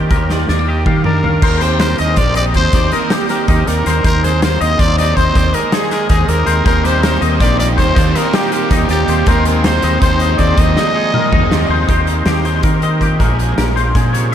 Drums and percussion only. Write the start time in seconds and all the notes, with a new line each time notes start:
0.10 kick, closed hi-hat
0.30 snare
0.49 snare
0.86 kick, mid tom
1.04 mid tom
1.24 floor tom
1.42 kick, crash
1.61 closed hi-hat
1.80 snare, closed hi-hat
1.98 closed hi-hat
2.16 kick, closed hi-hat
2.35 closed hi-hat
2.54 kick, closed hi-hat
2.73 kick, closed hi-hat
2.92 snare, closed hi-hat
3.10 snare, closed hi-hat
3.29 snare, closed hi-hat
3.48 kick, closed hi-hat
3.67 snare, closed hi-hat
3.86 snare, closed hi-hat
4.05 kick, closed hi-hat
4.24 snare, closed hi-hat
4.42 snare, closed hi-hat
4.61 closed hi-hat
4.79 kick, closed hi-hat
4.98 snare, closed hi-hat
5.17 kick, closed hi-hat
5.35 kick, closed hi-hat
5.54 closed hi-hat
5.72 snare, closed hi-hat
5.91 snare, closed hi-hat
6.09 kick, closed hi-hat
6.28 closed hi-hat
6.47 closed hi-hat
6.66 kick, closed hi-hat
6.85 snare, closed hi-hat
7.03 snare, closed hi-hat
7.22 closed hi-hat
7.40 kick, closed hi-hat
7.60 closed hi-hat
7.78 kick, closed hi-hat
7.97 kick, closed hi-hat
8.15 snare, closed hi-hat
8.33 snare, closed hi-hat
8.52 closed hi-hat
8.71 kick, snare, closed hi-hat
8.89 closed hi-hat
9.08 closed hi-hat
9.26 kick, closed hi-hat
9.45 closed hi-hat
9.64 snare, closed hi-hat
9.82 snare, closed hi-hat
10.02 kick, closed hi-hat
10.20 closed hi-hat
10.39 kick, closed hi-hat
10.57 kick, closed hi-hat
10.77 snare
11.14 mid tom
11.32 kick, mid tom
11.52 snare
11.89 kick, closed hi-hat
12.07 closed hi-hat
12.26 snare, closed hi-hat
12.45 closed hi-hat
12.63 kick, closed hi-hat
12.82 closed hi-hat
13.01 kick, closed hi-hat
13.20 kick, closed hi-hat
13.39 closed hi-hat
13.58 snare, closed hi-hat
13.77 closed hi-hat
13.95 kick, snare, closed hi-hat
14.14 closed hi-hat